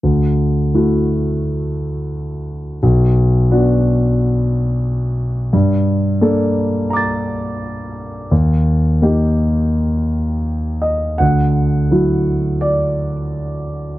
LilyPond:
\new Staff \with { instrumentName = "Grand piano" } { \time 4/4 \key d \major \tempo 4 = 86 << { r1 | r1 | r2 <bes'' d''' a'''>2 | r2. r8 ees''8 |
fis''2 d''2 | } \\ { d,4 <a e' fis'>2. | b,,4 <b d' fis'>2. | g,4 <bes d' a'>2. | ees,4 <bes ees' g'>2. |
d,4 <fis e' fis'>2. | } >> }